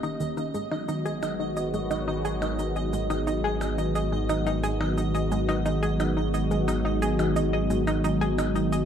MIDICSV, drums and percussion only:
0, 0, Header, 1, 3, 480
1, 0, Start_track
1, 0, Key_signature, 5, "minor"
1, 0, Tempo, 681818
1, 383, Time_signature, 4, 2, 24, 8
1, 6231, End_track
2, 0, Start_track
2, 0, Title_t, "Percussion blips"
2, 504, Note_on_c, 9, 77, 38
2, 574, Note_off_c, 9, 77, 0
2, 864, Note_on_c, 9, 77, 69
2, 934, Note_off_c, 9, 77, 0
2, 1343, Note_on_c, 9, 77, 40
2, 1414, Note_off_c, 9, 77, 0
2, 1704, Note_on_c, 9, 77, 69
2, 1774, Note_off_c, 9, 77, 0
2, 2184, Note_on_c, 9, 77, 38
2, 2254, Note_off_c, 9, 77, 0
2, 2543, Note_on_c, 9, 77, 67
2, 2613, Note_off_c, 9, 77, 0
2, 3023, Note_on_c, 9, 77, 38
2, 3093, Note_off_c, 9, 77, 0
2, 3384, Note_on_c, 9, 77, 65
2, 3454, Note_off_c, 9, 77, 0
2, 3863, Note_on_c, 9, 77, 39
2, 3934, Note_off_c, 9, 77, 0
2, 4224, Note_on_c, 9, 77, 68
2, 4294, Note_off_c, 9, 77, 0
2, 4704, Note_on_c, 9, 77, 42
2, 4774, Note_off_c, 9, 77, 0
2, 5063, Note_on_c, 9, 77, 69
2, 5134, Note_off_c, 9, 77, 0
2, 5543, Note_on_c, 9, 77, 40
2, 5614, Note_off_c, 9, 77, 0
2, 5903, Note_on_c, 9, 77, 75
2, 5973, Note_off_c, 9, 77, 0
2, 6231, End_track
3, 0, Start_track
3, 0, Title_t, "Drums"
3, 23, Note_on_c, 9, 82, 37
3, 93, Note_off_c, 9, 82, 0
3, 143, Note_on_c, 9, 82, 78
3, 213, Note_off_c, 9, 82, 0
3, 264, Note_on_c, 9, 82, 46
3, 334, Note_off_c, 9, 82, 0
3, 384, Note_on_c, 9, 82, 71
3, 454, Note_off_c, 9, 82, 0
3, 624, Note_on_c, 9, 82, 68
3, 694, Note_off_c, 9, 82, 0
3, 744, Note_on_c, 9, 82, 49
3, 814, Note_off_c, 9, 82, 0
3, 864, Note_on_c, 9, 82, 73
3, 934, Note_off_c, 9, 82, 0
3, 1104, Note_on_c, 9, 82, 71
3, 1174, Note_off_c, 9, 82, 0
3, 1224, Note_on_c, 9, 82, 48
3, 1294, Note_off_c, 9, 82, 0
3, 1343, Note_on_c, 9, 82, 73
3, 1414, Note_off_c, 9, 82, 0
3, 1583, Note_on_c, 9, 82, 73
3, 1654, Note_off_c, 9, 82, 0
3, 1704, Note_on_c, 9, 82, 49
3, 1774, Note_off_c, 9, 82, 0
3, 1824, Note_on_c, 9, 82, 71
3, 1894, Note_off_c, 9, 82, 0
3, 1944, Note_on_c, 9, 82, 34
3, 2014, Note_off_c, 9, 82, 0
3, 2064, Note_on_c, 9, 82, 77
3, 2134, Note_off_c, 9, 82, 0
3, 2184, Note_on_c, 9, 82, 46
3, 2254, Note_off_c, 9, 82, 0
3, 2303, Note_on_c, 9, 82, 70
3, 2374, Note_off_c, 9, 82, 0
3, 2543, Note_on_c, 9, 82, 66
3, 2613, Note_off_c, 9, 82, 0
3, 2663, Note_on_c, 9, 82, 48
3, 2733, Note_off_c, 9, 82, 0
3, 2783, Note_on_c, 9, 82, 71
3, 2853, Note_off_c, 9, 82, 0
3, 3023, Note_on_c, 9, 82, 68
3, 3093, Note_off_c, 9, 82, 0
3, 3144, Note_on_c, 9, 82, 45
3, 3214, Note_off_c, 9, 82, 0
3, 3263, Note_on_c, 9, 82, 70
3, 3334, Note_off_c, 9, 82, 0
3, 3504, Note_on_c, 9, 82, 72
3, 3574, Note_off_c, 9, 82, 0
3, 3624, Note_on_c, 9, 82, 48
3, 3694, Note_off_c, 9, 82, 0
3, 3743, Note_on_c, 9, 82, 70
3, 3814, Note_off_c, 9, 82, 0
3, 3863, Note_on_c, 9, 82, 34
3, 3934, Note_off_c, 9, 82, 0
3, 3983, Note_on_c, 9, 82, 72
3, 4053, Note_off_c, 9, 82, 0
3, 4103, Note_on_c, 9, 82, 44
3, 4174, Note_off_c, 9, 82, 0
3, 4224, Note_on_c, 9, 82, 67
3, 4294, Note_off_c, 9, 82, 0
3, 4464, Note_on_c, 9, 82, 67
3, 4534, Note_off_c, 9, 82, 0
3, 4584, Note_on_c, 9, 82, 49
3, 4654, Note_off_c, 9, 82, 0
3, 4704, Note_on_c, 9, 82, 70
3, 4774, Note_off_c, 9, 82, 0
3, 4944, Note_on_c, 9, 82, 69
3, 5014, Note_off_c, 9, 82, 0
3, 5063, Note_on_c, 9, 82, 46
3, 5134, Note_off_c, 9, 82, 0
3, 5183, Note_on_c, 9, 82, 68
3, 5253, Note_off_c, 9, 82, 0
3, 5423, Note_on_c, 9, 82, 70
3, 5493, Note_off_c, 9, 82, 0
3, 5543, Note_on_c, 9, 82, 46
3, 5614, Note_off_c, 9, 82, 0
3, 5662, Note_on_c, 9, 82, 70
3, 5732, Note_off_c, 9, 82, 0
3, 5783, Note_on_c, 9, 82, 34
3, 5854, Note_off_c, 9, 82, 0
3, 5903, Note_on_c, 9, 82, 70
3, 5973, Note_off_c, 9, 82, 0
3, 6023, Note_on_c, 9, 82, 45
3, 6093, Note_off_c, 9, 82, 0
3, 6143, Note_on_c, 9, 82, 69
3, 6213, Note_off_c, 9, 82, 0
3, 6231, End_track
0, 0, End_of_file